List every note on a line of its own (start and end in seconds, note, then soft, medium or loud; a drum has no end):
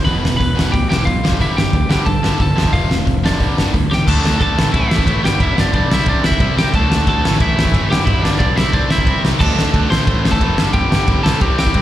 0.05 0.19 E1 medium
0.05 0.23 E2 medium
0.05 0.23 B2 loud
0.05 0.23 E3 medium
0.05 0.37 B4 medium
0.05 0.36 B5 loud
0.05 kick medium
0.05 open hi-hat soft
0.23 0.35 E1 medium
0.23 0.38 E2 medium
0.23 0.39 B2 medium
0.23 snare loud
0.37 0.64 E1 medium
0.37 0.54 E2 medium
0.37 0.54 B2 medium
0.37 0.70 B4 medium
0.37 0.70 B5 loud
0.37 kick loud
0.37 open hi-hat medium
0.55 0.72 E2 medium
0.55 0.72 B2 medium
0.55 0.72 E3 medium
0.59 snare loud
0.71 0.86 D2 loud
0.71 0.89 E2 medium
0.71 0.89 B2 medium
0.71 0.88 G4 medium
0.71 0.88 G5 medium
0.71 kick loud
0.71 open hi-hat medium
0.89 1.03 E1 medium
0.89 1.06 E2 medium
0.89 1.06 B2 medium
0.89 1.07 E3 medium
0.89 1.06 G4 medium
0.89 1.05 G5 medium
0.89 snare loud
1.05 1.20 B1 medium
1.05 1.22 E2 medium
1.05 1.22 B2 medium
1.05 1.38 F4 medium
1.05 1.37 F5 medium
1.05 kick loud
1.05 open hi-hat medium
1.23 1.36 G1 medium
1.23 1.39 G2 medium
1.23 1.39 D3 medium
1.23 1.40 G3 medium
1.23 snare loud
1.32 kick medium
1.40 1.52 G1 loud
1.40 1.56 G2 medium
1.40 1.56 D3 medium
1.40 1.57 G3 loud
1.40 1.56 E4 medium
1.40 1.58 E5 medium
1.40 kick medium
1.40 open hi-hat medium
1.56 1.69 G1 medium
1.56 1.72 G2 medium
1.56 1.72 D3 medium
1.56 1.88 G4 medium
1.56 1.90 G5 loud
1.56 snare loud
1.73 1.85 D2 medium
1.73 1.88 G2 medium
1.73 1.88 D3 medium
1.73 kick loud
1.73 open hi-hat soft
1.89 2.02 G1 medium
1.89 2.04 G2 medium
1.89 2.05 D3 loud
1.89 2.06 G3 medium
1.89 2.06 G4 medium
1.89 2.05 G5 medium
1.89 snare loud
2.06 2.21 G2 medium
2.06 2.19 G2 medium
2.06 2.21 D3 medium
2.06 2.38 A4 medium
2.06 2.37 A5 medium
2.06 kick loud
2.06 open hi-hat medium
2.23 2.35 G1 medium
2.23 2.39 G2 medium
2.23 2.40 D3 medium
2.23 2.40 G3 medium
2.23 snare loud
2.39 2.52 G1 medium
2.39 2.55 G2 medium
2.39 2.56 D3 medium
2.39 2.72 A4 medium
2.39 2.72 A5 medium
2.39 kick loud
2.39 open hi-hat medium
2.55 2.68 F1 medium
2.55 2.72 F2 medium
2.55 2.73 C3 medium
2.55 2.73 F3 medium
2.55 snare loud
2.65 kick medium
2.73 2.86 F1 medium
2.73 2.88 F2 medium
2.73 2.89 C3 loud
2.73 2.89 F3 loud
2.73 3.05 F4 medium
2.73 3.04 F5 medium
2.73 kick loud
2.73 open hi-hat medium
2.89 3.01 F1 loud
2.89 3.04 F2 medium
2.89 3.04 C3 medium
2.89 snare medium
3.05 3.31 F1 medium
3.05 3.21 F2 medium
3.05 3.21 C3 medium
3.05 kick loud
3.05 open hi-hat soft
3.23 3.39 F2 medium
3.23 3.40 C3 medium
3.23 3.40 F3 medium
3.23 3.71 D4 medium
3.23 3.71 D5 medium
3.23 snare loud
3.40 3.52 G1 loud
3.40 3.56 G2 medium
3.40 3.56 D3 medium
3.40 3.56 G3 medium
3.40 kick loud
3.40 open hi-hat medium
3.58 3.70 G1 medium
3.58 3.73 G2 medium
3.58 3.73 D3 medium
3.58 3.74 G3 medium
3.58 snare loud
3.74 3.86 D2 medium
3.74 3.89 G2 medium
3.74 3.89 D3 medium
3.74 kick loud
3.74 open hi-hat medium
3.90 4.02 E2 medium
3.90 4.05 G2 medium
3.90 4.06 D3 medium
3.90 4.06 G4 medium
3.90 snare medium
3.94 4.09 G5 medium
4.07 4.22 D2 loud
4.07 4.25 D3 medium
4.07 4.24 A3 loud
4.07 4.23 D4 loud
4.07 4.38 A4 medium
4.07 4.41 A5 loud
4.07 kick loud
4.07 crash loud
4.24 4.39 D2 medium
4.24 4.40 D3 medium
4.24 4.40 A3 loud
4.24 4.41 D4 loud
4.24 snare loud
4.40 4.56 D2 loud
4.40 4.56 D3 medium
4.40 4.56 A3 medium
4.40 4.57 D4 medium
4.40 4.71 A4 medium
4.40 4.73 A5 medium
4.40 kick loud
4.40 ride medium
4.57 4.73 A1 medium
4.57 4.75 A2 medium
4.57 4.74 E3 loud
4.57 4.73 A3 loud
4.57 snare loud
4.73 4.89 A1 loud
4.73 4.90 A2 medium
4.73 4.91 E3 medium
4.73 4.92 A3 loud
4.73 5.20 E4 medium
4.73 5.25 E5 medium
4.73 kick loud
4.73 ride medium
4.91 5.06 A1 medium
4.91 5.07 A2 medium
4.91 5.07 E3 loud
4.91 5.06 A3 medium
4.91 snare loud
4.99 kick medium
5.07 5.22 A1 loud
5.07 5.23 A2 medium
5.07 5.23 E3 loud
5.07 5.22 A3 medium
5.07 kick loud
5.07 ride medium
5.22 5.39 G1 medium
5.22 5.41 G2 medium
5.22 5.40 D3 loud
5.22 5.39 G3 loud
5.22 5.39 G4 medium
5.22 5.42 G5 loud
5.22 snare loud
5.40 5.55 G1 loud
5.40 5.55 G2 medium
5.40 5.56 D3 loud
5.40 5.56 G3 loud
5.40 5.56 E4 medium
5.40 5.58 E5 medium
5.40 kick loud
5.40 ride medium
5.56 5.72 G1 medium
5.56 5.73 G2 medium
5.56 5.73 D3 loud
5.56 5.72 G3 loud
5.56 5.73 D4 medium
5.56 5.75 D5 medium
5.56 snare loud
5.73 5.88 B1 loud
5.73 5.89 G2 medium
5.73 5.89 D3 medium
5.73 5.89 G3 medium
5.73 5.89 D4 medium
5.73 5.92 D5 medium
5.73 kick loud
5.73 ride medium
5.90 6.05 C2 medium
5.90 6.07 C3 medium
5.90 6.06 G3 loud
5.90 6.06 C4 loud
5.90 6.07 E4 medium
5.90 6.09 E5 medium
5.90 snare loud
6.06 6.37 C2 loud
6.06 6.22 C3 medium
6.06 6.24 G3 loud
6.06 6.24 C4 medium
6.06 6.23 D4 medium
6.06 6.25 D5 medium
6.06 kick loud
6.06 ride medium
6.24 6.40 C3 medium
6.24 6.40 G3 medium
6.24 6.39 C4 medium
6.24 6.55 E4 medium
6.24 6.58 E5 medium
6.24 snare loud
6.32 kick medium
6.40 6.55 C2 loud
6.40 6.56 C3 medium
6.40 6.56 G3 medium
6.40 6.57 C4 medium
6.40 kick loud
6.40 ride medium
6.56 6.71 C2 loud
6.56 6.72 C3 medium
6.56 6.73 G3 medium
6.56 6.73 C4 medium
6.56 6.73 G4 medium
6.56 6.75 G5 loud
6.56 snare loud
6.73 6.88 D2 loud
6.73 6.89 D3 loud
6.73 6.89 A3 loud
6.73 6.88 D4 loud
6.73 7.05 A4 medium
6.73 7.08 A5 medium
6.73 kick loud
6.73 ride medium
6.89 7.04 D2 loud
6.89 7.05 D3 medium
6.89 7.06 A3 medium
6.89 7.06 D4 loud
6.89 snare loud
7.06 7.22 D2 loud
7.06 7.22 D3 medium
7.06 7.22 A3 medium
7.06 7.22 D4 medium
7.06 7.38 A4 medium
7.06 7.41 A5 loud
7.06 kick loud
7.06 ride medium
7.22 7.38 A1 medium
7.22 7.39 A2 loud
7.22 7.38 E3 loud
7.22 7.38 A3 loud
7.22 snare loud
7.39 7.55 A1 loud
7.39 7.54 A2 medium
7.39 7.55 E3 loud
7.39 7.56 A3 loud
7.39 7.87 E4 medium
7.39 7.87 E5 medium
7.39 kick loud
7.39 ride medium
7.56 7.72 A1 medium
7.56 7.73 A2 medium
7.56 7.73 E3 medium
7.56 7.72 A3 medium
7.56 snare loud
7.65 kick medium
7.73 7.88 G1 loud
7.73 7.90 A2 medium
7.73 7.89 E3 medium
7.73 7.89 A3 medium
7.73 kick loud
7.73 ride medium
7.89 8.04 G1 loud
7.89 8.06 G2 medium
7.89 8.05 D3 loud
7.89 8.04 G3 loud
7.89 8.06 G4 medium
7.89 8.06 G5 loud
7.89 snare loud
8.05 8.21 G1 loud
8.05 8.22 G2 loud
8.05 8.22 D3 loud
8.05 8.23 G3 loud
8.05 8.21 E4 medium
8.05 8.23 E5 loud
8.05 kick loud
8.05 ride medium
8.22 8.38 G1 loud
8.22 8.39 G2 medium
8.22 8.39 D3 loud
8.22 8.38 G3 loud
8.22 8.38 D4 medium
8.22 8.38 D5 medium
8.22 snare loud
8.39 8.55 B1 loud
8.39 8.56 G2 medium
8.39 8.56 D3 medium
8.39 8.55 G3 medium
8.39 8.55 D4 medium
8.39 8.56 D5 loud
8.39 kick loud
8.39 ride medium
8.55 8.71 C2 medium
8.55 8.73 C3 medium
8.55 8.72 G3 loud
8.55 8.71 C4 loud
8.55 8.72 E4 medium
8.55 8.74 E5 medium
8.55 snare loud
8.73 9.04 C2 medium
8.73 8.89 C3 medium
8.73 8.89 G3 medium
8.73 8.90 C4 loud
8.73 8.89 D4 medium
8.73 8.89 D5 medium
8.73 kick loud
8.73 ride medium
8.90 9.08 C3 medium
8.90 9.07 G3 medium
8.90 9.07 C4 loud
8.90 9.21 E4 medium
8.90 9.22 E5 medium
8.90 snare loud
8.98 kick loud
9.06 9.22 C2 loud
9.06 9.23 C3 medium
9.06 9.24 G3 medium
9.06 9.25 C4 loud
9.06 kick loud
9.06 ride medium
9.24 9.39 C2 medium
9.24 9.40 C3 medium
9.24 9.40 G3 medium
9.24 9.41 C4 medium
9.24 snare loud
9.40 9.55 D2 medium
9.40 9.58 D3 loud
9.40 9.58 A3 loud
9.40 9.57 D4 loud
9.40 9.87 A4 medium
9.40 9.90 A5 loud
9.40 kick loud
9.40 crash loud
9.57 9.72 D2 medium
9.57 9.73 D3 medium
9.57 9.74 A3 medium
9.57 9.75 D4 loud
9.57 snare loud
9.74 9.89 D2 medium
9.74 9.90 D3 medium
9.74 9.90 A3 medium
9.74 9.91 D4 medium
9.74 kick loud
9.74 ride medium
9.90 10.06 A1 medium
9.90 10.07 A2 loud
9.90 10.06 E3 loud
9.90 10.05 A3 loud
9.90 10.29 C5 medium
9.90 10.34 C6 medium
9.90 snare loud
10.07 10.22 A1 loud
10.07 10.23 A2 medium
10.07 10.24 E3 medium
10.07 10.24 A3 loud
10.07 kick loud
10.07 ride medium
10.24 10.40 A1 medium
10.24 10.42 A2 medium
10.24 10.41 E3 medium
10.24 10.40 A3 medium
10.24 snare loud
10.31 10.72 A4 medium
10.31 10.71 A5 loud
10.31 kick medium
10.41 10.56 F1 loud
10.41 10.58 A2 medium
10.41 10.57 E3 medium
10.41 10.57 A3 loud
10.41 kick loud
10.41 ride medium
10.57 10.72 G1 medium
10.57 10.75 G2 loud
10.57 10.74 D3 medium
10.57 10.73 G3 loud
10.57 snare loud
10.73 10.89 G1 medium
10.73 10.89 G2 medium
10.73 10.90 D3 loud
10.73 10.91 G3 loud
10.73 11.21 G4 medium
10.73 11.23 G5 loud
10.73 kick loud
10.73 ride medium
10.90 11.07 G1 loud
10.90 11.09 G2 medium
10.90 11.09 D3 medium
10.90 11.08 G3 loud
10.90 snare loud
11.08 11.23 G1 medium
11.08 11.25 G2 medium
11.08 11.24 D3 medium
11.08 11.24 G3 medium
11.08 kick loud
11.08 ride medium
11.23 11.41 C2 medium
11.23 11.41 C3 loud
11.23 11.41 G3 loud
11.23 11.40 C4 loud
11.23 11.40 A4 medium
11.23 11.41 A5 medium
11.23 snare loud
11.41 11.72 C2 loud
11.41 11.57 C3 medium
11.41 11.58 G3 loud
11.41 11.59 C4 loud
11.41 11.57 G4 medium
11.41 11.57 G5 loud
11.41 kick loud
11.41 ride medium
11.58 11.75 C3 medium
11.58 11.75 G3 medium
11.58 11.74 C4 loud
11.58 11.82 G4 medium
11.58 11.82 G5 medium
11.58 snare loud
11.67 kick medium
11.74 11.82 C2 medium
11.74 11.82 C3 medium
11.74 11.82 G3 medium
11.74 11.82 C4 loud
11.74 kick loud
11.74 ride medium